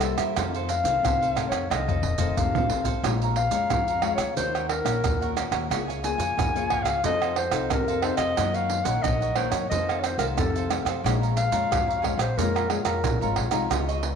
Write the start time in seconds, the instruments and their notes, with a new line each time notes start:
Already playing: upright bass C2, nylon-string guitar G2, clarinet A4
0.01 nylon-string guitar G3 A#3 E4, cavaquinho E4 A#4 C5 E5, pandeiro, tamborim, maracas
0.17 upright bass E2, cavaquinho A#4 C5 E5, pandeiro, tamborim, maracas
0.36 upright bass F2, nylon-string guitar F2 D#3 A3 C4, cavaquinho D#4 A4 C5 F5, pandeiro, tamborim, maracas, surdo
0.54 cavaquinho A4 C5 F5, pandeiro, maracas
0.69 clarinet F5, muted cavaquinho stroke, pandeiro, maracas
0.84 upright bass C2, nylon-string guitar D#3 A3 C4, cavaquinho A4 C5 F5, pandeiro, maracas
1.03 upright bass C2, nylon-string guitar C3, cavaquinho D#4 A4 C5 F5, pandeiro, tamborim, maracas, surdo
1.21 cavaquinho A4 C5 F5, pandeiro, maracas
1.35 nylon-string guitar D#3 A3 C4, cavaquinho D#4 A4 C5 F5, pandeiro, tamborim, maracas, surdo
1.49 upright bass F2, clarinet C#5, pandeiro, tamborim, maracas
1.70 upright bass C2, nylon-string guitar F2 D#3 A3 C4, cavaquinho D#4 A4 C5 F5, clarinet D#5, pandeiro, tamborim, maracas, surdo
1.88 cavaquinho A4 C5 F5, surdo, pandeiro, maracas
2.02 upright bass D#1, muted cavaquinho stroke, surdo, pandeiro
2.18 nylon-string guitar D#3 A3 C4, cavaquinho A4 C5 F5, surdo, pandeiro, maracas
2.37 upright bass F1, nylon-string guitar C3, clarinet F5, surdo, pandeiro, maracas
2.55 cavaquinho A4 C5 F5, pandeiro, maracas, surdo
2.68 upright bass A1, nylon-string guitar D#3 A3 C4, cavaquinho D#4 A4 C5 F5, pandeiro
2.84 cavaquinho A4 C5 F5, pandeiro, maracas, surdo
3.03 upright bass A#1, nylon-string guitar A#2 G#3 C#4 F4, cavaquinho G#4 C#5 F5 A#5, pandeiro, tamborim, maracas, surdo
3.22 cavaquinho C#5 F5 A#5, pandeiro, maracas
3.36 clarinet F5, muted cavaquinho stroke, pandeiro
3.51 upright bass F2, nylon-string guitar G#3 C#4 F4, cavaquinho C#5 F5 A#5, pandeiro, maracas
3.70 nylon-string guitar F2, upright bass F2, cavaquinho G#4 C#5 F5 A#5, pandeiro, tamborim, maracas, surdo
3.88 cavaquinho C#5 F5 A#5, pandeiro, maracas
4.02 nylon-string guitar G#3 C#4 F4, cavaquinho G#4 C#5 F5 A#5, pandeiro, tamborim
4.15 upright bass D2, clarinet C#5, pandeiro, tamborim, maracas
4.35 upright bass D#2, nylon-string guitar D#3 A#3 C#4 F#4, cavaquinho D#4 A#4 C#5 F#5, clarinet C5, pandeiro, maracas, surdo
4.55 cavaquinho A#4 C#5 F#5, pandeiro, tamborim, maracas
4.69 clarinet A#4, muted cavaquinho stroke, pandeiro, tamborim
4.84 upright bass A#1, nylon-string guitar A#3 C#4 F#4, cavaquinho A#4 C#5 F#5, pandeiro, tamborim, maracas
5.04 upright bass D#2, nylon-string guitar A#2, pandeiro, tamborim, maracas, surdo
5.21 cavaquinho A#4 C#5 F#5, pandeiro, maracas
5.36 nylon-string guitar A#3 C#4 F#4, cavaquinho D#4 A#4 C#5 F#5, pandeiro, tamborim, maracas
5.51 upright bass D#2, cavaquinho A#4 C#5 F#5, pandeiro, tamborim, maracas
5.70 upright bass C#2, nylon-string guitar C#3 A#3 F4 G#4, cavaquinho A#4 C#5 F5 G#5, pandeiro, tamborim, maracas, surdo
5.88 cavaquinho C#5 F5 G#5, pandeiro, maracas
6.02 nylon-string guitar A#3 F4 G#4, clarinet G#5, muted cavaquinho stroke, pandeiro, maracas
6.18 upright bass F2, cavaquinho C#5 F5 G#5, pandeiro, maracas
6.37 upright bass F2, nylon-string guitar C#3, cavaquinho A#4 C#5 F5 G#5, pandeiro, tamborim, maracas, surdo
6.55 nylon-string guitar A#3 F4 G#4, cavaquinho C#5 F5 G#5, pandeiro, maracas
6.70 cavaquinho A#4 C#5 F5 G#5, pandeiro, tamborim, surdo
6.82 upright bass C#2, clarinet F5, pandeiro, tamborim, maracas
7.03 upright bass F2, nylon-string guitar F3 C4 D#4 A4, cavaquinho D#4 A4 C5 F5, clarinet D#5, pandeiro, maracas, surdo
7.21 cavaquinho A4 C5 F5, pandeiro, tamborim, maracas
7.36 clarinet C5, muted cavaquinho stroke, pandeiro, tamborim
7.51 upright bass C2, nylon-string guitar C4 D#4 A4, cavaquinho A4 C5 F5, pandeiro, tamborim, maracas
7.70 upright bass F2, nylon-string guitar C3, clarinet A#4, pandeiro, tamborim, maracas, surdo
7.88 cavaquinho A4 C5 F5, pandeiro, maracas
8.02 nylon-string guitar C4 D#4 A4, cavaquinho D#4 A4 C5 F5, clarinet C5, pandeiro, tamborim
8.17 upright bass F2, cavaquinho A4 C5 F5, clarinet D#5, pandeiro, tamborim, maracas
8.36 upright bass F#2, nylon-string guitar F#2 D#3 A#3 C#4, cavaquinho D#4 A#4 C#5 F#5, pandeiro, tamborim, maracas, surdo
8.54 cavaquinho A#4 C#5 F#5, clarinet F5, pandeiro, maracas
8.70 muted cavaquinho stroke, pandeiro
8.84 upright bass A#1, nylon-string guitar D#3 A#3 C#4, cavaquinho A#4 C#5 F#5, clarinet F#5, pandeiro, maracas
9.02 upright bass A#1, nylon-string guitar F#2, cavaquinho D#4 A#4 C#5 F#5, clarinet D#5, pandeiro, tamborim, maracas, surdo
9.21 cavaquinho A#4 C#5 F#5, pandeiro, maracas
9.35 nylon-string guitar D#3 A#3 C#4, cavaquinho D#4 A#4 C#5 F#5, clarinet C5, pandeiro, tamborim
9.50 upright bass F#2, clarinet C#5, pandeiro, tamborim, maracas
9.69 nylon-string guitar F2 D#3 A3 C4, upright bass F2, cavaquinho D#4 A4 C5 F5, clarinet D#5, pandeiro, maracas, surdo
9.89 cavaquinho A4 C5 F5, pandeiro, tamborim, maracas
10.00 clarinet C5 C#5
10.04 pandeiro, tamborim, maracas
10.18 upright bass C2, nylon-string guitar D#3 A3 C4, cavaquinho A4 C5 F5, clarinet A#4, pandeiro, tamborim, maracas
10.37 upright bass F2, nylon-string guitar C3, clarinet A4, pandeiro, tamborim, maracas, surdo
10.56 cavaquinho A4 C5 F5, pandeiro, maracas
10.69 nylon-string guitar D#3 A3 C4, cavaquinho D#4 A4 C5 F5, pandeiro, tamborim, maracas
10.85 upright bass F2, cavaquinho A4 C5 F5, pandeiro, tamborim, maracas
11.04 upright bass A#1, nylon-string guitar A#2 G#3 C#4 F4, cavaquinho G#4 C#5 F5 A#5, pandeiro, tamborim, maracas, surdo
11.22 cavaquinho C#5 F5 A#5, pandeiro, maracas
11.36 clarinet F5, muted cavaquinho stroke, pandeiro, maracas
11.52 nylon-string guitar G#3 C#4 F4, cavaquinho C#5 F5 A#5, pandeiro, maracas
11.70 upright bass F2, nylon-string guitar F2, cavaquinho G#4 C#5 F5 A#5, pandeiro, tamborim, maracas, surdo
11.87 cavaquinho C#5 F5 A#5, pandeiro, maracas
12.02 nylon-string guitar G#3 C#4 F4, cavaquinho G#4 C#5 F5 A#5, pandeiro, tamborim, surdo
12.18 upright bass A#1, clarinet C5, pandeiro, tamborim, maracas
12.37 upright bass F2, nylon-string guitar A#2 G#3 C#4 F4, cavaquinho G#4 C#5 F5 A#5, clarinet A#4, pandeiro, maracas, surdo
12.55 cavaquinho C#5 F5 A#5, pandeiro, tamborim, maracas
12.69 nylon-string guitar G#3 C#4 F4, clarinet G#4, pandeiro, tamborim
12.85 upright bass F2, clarinet A#4, cavaquinho C#5 F5 A#5, pandeiro, tamborim, maracas
13.04 upright bass A#1, nylon-string guitar F2, pandeiro, tamborim, maracas, surdo
13.21 upright bass G#1, nylon-string guitar G#3 C#4 F4, cavaquinho C#5 F5 A#5, pandeiro, maracas
13.36 upright bass A#1, cavaquinho G#4 C#5 F5 A#5, pandeiro, tamborim
13.51 upright bass C2, nylon-string guitar G#3 D#4 F4, cavaquinho C#5 F5 A#5, pandeiro, tamborim, maracas
13.70 upright bass C#2, nylon-string guitar C#3, cavaquinho F4 G#4 C#5 D#5, pandeiro, tamborim, maracas, surdo
13.88 cavaquinho G#4 C#5 D#5, pandeiro, maracas
14.03 muted cavaquinho stroke, pandeiro